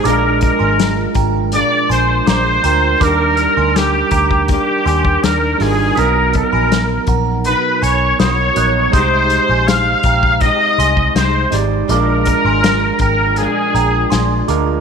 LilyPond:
<<
  \new Staff \with { instrumentName = "Synth bell" } { \time 4/4 \key bes \mixolydian \tempo 4 = 81 <bes'' d'''>8 r16 <aes'' c'''>16 r8 <g'' bes''>8. r16 <aes'' c'''>16 r16 <bes'' d'''>16 r16 <g'' bes''>16 r16 | <bes'' d'''>8 r16 <aes'' c'''>16 r8 <g'' bes''>8. r16 <aes'' c'''>16 r4 r16 | <dis''' b'''>8 r16 <aes'' b''>16 r8 <fis'' ais''>8. r16 <aes'' b''>16 r16 <b'' dis'''>16 r16 <dis''' fis'''>16 r16 | <c''' ees'''>8 r16 <aes'' c'''>16 r8 <g'' bes''>8. r16 <aes'' c'''>16 r4 r16 |
<bes'' d'''>8 r16 <aes'' c'''>16 r8 <g'' bes''>8. r16 <g'' bes''>16 r16 <aes'' c'''>16 r16 <bes'' d'''>16 r16 | }
  \new Staff \with { instrumentName = "Trumpet" } { \time 4/4 \key bes \mixolydian bes'8 bes'4 r8 d''8 c''8 c''4 | bes'4 g'4 g'4 bes'8 aes'8 | ais'8 ais'4 r8 b'8 des''8 des''4 | c''4 f''4 ees''4 c''8 r8 |
bes'4. bes'8 aes'4. r8 | }
  \new Staff \with { instrumentName = "Tine electric piano" } { \time 4/4 \key bes \mixolydian <aes d' f' bes'>4. r2 <aes d' f' bes'>8 | <g d' ees' bes'>4. r2 <g d' ees' f'>8 | <fis b dis' ais'>4. r2 <fis b dis' des''>8 | <aes ees' g' c''>4. r2 <aes ees' g' d''>8 |
<aes d' f' bes'>4. r2 <aes d' f' bes'>8 | }
  \new Staff \with { instrumentName = "Nylon-string guitar" } { \time 4/4 \key bes \mixolydian <bes, f aes d'>2 <bes, f aes d'>4 <bes, f aes d'>4 | <bes d' g'>2 <ees bes d' g'>4 <ees bes d'>4 | <ais dis' fis'>2 <b, dis' fis'>4 <ais dis' fis'>4 | <c aes ees' g'>2 <c aes ees' g'>4 <c aes ees' g'>4 |
<bes, f aes d'>2 <bes, f aes d'>4 <bes, f aes d'>4 | }
  \new Staff \with { instrumentName = "Picked electric bass" } { \clef bass \time 4/4 \key bes \mixolydian bes,,8. aes,,8. aes,,8. r16 bes,,8 bes,,8 d,8 | ees,8. d,8. d,8. r16 ees,8 ees,8 aes,,8 | b,,8. ais,,8. ais,,8. r16 b,,8 b,,8 ais,,8 | c,8. bes,,8. bes,,8. r16 c,8 c,8 aes,,8 |
bes,,8. aes,,8. aes,,8. r16 bes,,8 bes,,8 d,8 | }
  \new DrumStaff \with { instrumentName = "Drums" } \drummode { \time 4/4 hh8 <hh bd>8 <hh sn>8 <hh bd>8 hh8 hh8 <hh sn>8 hh8 | <hh bd>8 hh8 <hh sn>8 <hh bd>16 bd16 <hh bd>8 hh16 bd16 <hh sn>8 <hho sn>8 | hh8 <hh bd>8 <hh sn>8 <hh bd>8 hh8 hh8 <hh sn>8 hh8 | <hh bd>8 hh8 <hh sn>8 <hh bd>16 bd16 <hh bd>8 hh16 bd16 <hh sn>8 <hh sn>8 |
hh8 <hh bd>8 <hh sn>8 <hh bd>8 hh8 hh8 <hh sn>8 hh8 | }
>>